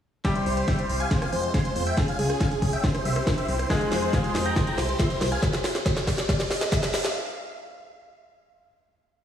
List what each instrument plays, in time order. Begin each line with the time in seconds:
0.25 analog synth pad C3 C4 E4 G4, grand piano G3 G4, supersaw synth E5 G5, kick, snare, closed hi-hat, riser
0.35 supersaw synth C5, closed hi-hat
0.46 analog synth bass C2, supersaw synth C5, open hi-hat
0.57 supersaw synth C5, closed hi-hat
0.68 supersaw synth E5 G5, kick, snare, closed hi-hat
0.79 supersaw synth C5, closed hi-hat
0.89 analog synth bass C2, supersaw synth C5, open hi-hat
1.00 supersaw synth F5 G#5, closed hi-hat
1.11 analog synth pad G#3 F4, supersaw synth C5, kick, snare, closed hi-hat
1.22 supersaw synth F5 G#5, cross-stick, closed hi-hat
1.33 analog synth bass F2, supersaw synth C5, open hi-hat
1.43 supersaw synth C5, closed hi-hat
1.54 supersaw synth G#5 C6, kick, snare, closed hi-hat
1.65 supersaw synth C5, closed hi-hat
1.76 analog synth bass F2, supersaw synth C5, open hi-hat
1.87 supersaw synth E5 G5, closed hi-hat
1.97 analog synth pad C#3 C#4 G#4, supersaw synth G#4, kick, snare, closed hi-hat
2.08 supersaw synth F5 G#5, closed hi-hat
2.19 analog synth bass C#2, supersaw synth G#4, open hi-hat
2.30 supersaw synth G#4, cross-stick, closed hi-hat
2.40 supersaw synth F5 G#5, kick, snare, closed hi-hat
2.51 supersaw synth G#4, closed hi-hat
2.62 analog synth bass C#2, supersaw synth G#4, kick, open hi-hat
2.73 supersaw synth E5 G5, closed hi-hat
2.84 analog synth pad C3 C4 E4 G4, supersaw synth C5, kick, snare, closed hi-hat
2.95 supersaw synth C5, cross-stick, closed hi-hat
3.05 analog synth bass C2, supersaw synth C5 E5, open hi-hat
3.16 supersaw synth C5, cross-stick, closed hi-hat
3.27 supersaw synth C5, kick, snare, closed hi-hat
3.38 supersaw synth C5 E5, closed hi-hat
3.48 analog synth bass C2, supersaw synth C5, open hi-hat
3.59 supersaw synth C5, cross-stick, closed hi-hat
3.70 analog synth pad G#3 F4, grand piano G#3 G#4, supersaw synth F5 G#5, kick, snare, closed hi-hat
3.81 supersaw synth C5, closed hi-hat
3.92 analog synth bass F2, supersaw synth C5, snare, open hi-hat
4.02 supersaw synth C5, closed hi-hat
4.13 supersaw synth F5 G#5, kick, snare, closed hi-hat
4.24 supersaw synth C5, closed hi-hat
4.35 analog synth bass F2, supersaw synth C5, snare, open hi-hat
4.46 supersaw synth G5 A#5, closed hi-hat
4.56 analog synth pad C3 E4 G4, supersaw synth C5, kick, snare, closed hi-hat
4.67 supersaw synth G5 A#5, closed hi-hat
4.78 analog synth bass C2, supersaw synth C5, snare, open hi-hat
4.89 supersaw synth C5, closed hi-hat
4.99 supersaw synth E5 C6, kick, snare, closed hi-hat
5.10 supersaw synth C5, closed hi-hat
5.21 analog synth bass C2, supersaw synth C5, snare, open hi-hat
5.32 supersaw synth F5 G#5, closed hi-hat
5.43 kick, snare, closed hi-hat
5.53 snare, closed hi-hat
5.64 snare, open hi-hat
5.75 snare, closed hi-hat
5.86 kick, snare, closed hi-hat
5.97 snare, closed hi-hat
6.07 kick, snare, open hi-hat
6.18 snare, closed hi-hat
6.29 kick, snare, closed hi-hat
6.40 snare, closed hi-hat
6.51 snare, open hi-hat
6.61 snare, closed hi-hat
6.72 kick, snare, closed hi-hat
6.83 snare, closed hi-hat
6.94 snare, open hi-hat
7.05 snare, closed hi-hat